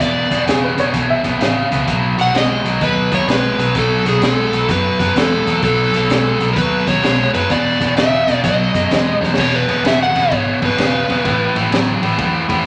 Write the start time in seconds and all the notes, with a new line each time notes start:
0.00 E1 E2 B2 D5, kick, snare, closed hi-hat
0.31 E1 E2 B2, kick, snare, closed hi-hat
0.46 E1 E2 C#3 G#4, snare, closed hi-hat
0.64 B4
0.77 E1 E2 B2 C#5, snare, closed hi-hat
0.93 B1 E2 B2, kick, closed hi-hat
1.10 E5
1.24 B1 E2 B2, kick, snare, closed hi-hat
1.40 A1 E2 C#3, snare, closed hi-hat
1.71 C#2 E2 B2, snare, closed hi-hat
1.87 B1 B2 F#3, kick, closed hi-hat
2.18 B1 B2 F#3 F#5, snare, closed hi-hat
2.34 B1 B2 G#3 D#5, snare, closed hi-hat
2.64 B1 B2 F#3, snare, closed hi-hat
2.81 D#2 B2 F#3 B4, kick, snare, closed hi-hat
3.12 D#2 B2 F#3 C#5, kick, snare, closed hi-hat
3.28 B1 B2 G#3 B4, snare, closed hi-hat
3.58 B1 B2 F#3, snare, closed hi-hat
3.75 B1 B2 F#3 A4, kick, snare, closed hi-hat
4.05 B1 B2 F#3 G#4, snare, closed hi-hat
4.22 B1 B2 G#3 A4, snare, closed hi-hat
4.52 B1 B2 F#3, snare, closed hi-hat
4.69 F#2 B2 F#3 B4, kick, snare, closed hi-hat
4.99 F#2 B2 F#3, kick, snare, closed hi-hat
5.15 E2 B2 G#3 A4, snare, closed hi-hat
5.46 E2 B2 F#3, snare, closed hi-hat
5.62 B1 B2 F#3 A4, kick, closed hi-hat
5.93 B1 B2 F#3, snare, closed hi-hat
6.09 B1 B2 G#3, snare, closed hi-hat
6.40 B1 B2 F#3, snare, closed hi-hat
6.53 D#2 B2 A#4, kick, closed hi-hat
6.58 F#3 B4
6.87 D#2 B2 F#3 C#5, kick, snare, closed hi-hat
7.03 B1 B2 G#3, snare, closed hi-hat
7.33 F#2 B2 F#3 B4, snare, closed hi-hat
7.50 E1 E2 B2 D5, kick, closed hi-hat
7.80 E1 E2 B2, kick, snare, closed hi-hat
7.96 E1 E2 C#3 E5, snare, closed hi-hat
8.27 E1 E2 B2, snare, closed hi-hat
8.43 B1 B2 F#3 D#5, kick, snare, closed hi-hat
8.74 F#2 B2 F#3, kick, snare, closed hi-hat
8.90 E2 B2 G#3, snare, closed hi-hat
9.20 E2 B2 F#3, snare
9.34 E2 B2, kick, snare, crash
9.38 E1 C#5
9.56 B4
9.67 E1 E2 B2, snare, ride
9.84 E1 E2 C#3 E5, snare, ride
10.03 F#5
10.15 E1 E2 B2, snare, ride
10.31 G#1 E2 B2 C#5, kick, ride
10.62 G#1 E2 B2 B4, kick, snare, ride
10.78 E1 E2 C#3, snare, ride
11.09 E1 E2 B2, snare, ride
11.25 A1 A2 E3, kick, snare, ride
11.55 A1 A2 E3, snare, ride
11.71 A1 A2 F#3, snare, ride
12.02 A1 A2 E3, snare, ride
12.18 E2 A2 E3, kick, ride
12.49 E2 A2 E3, kick, snare, ride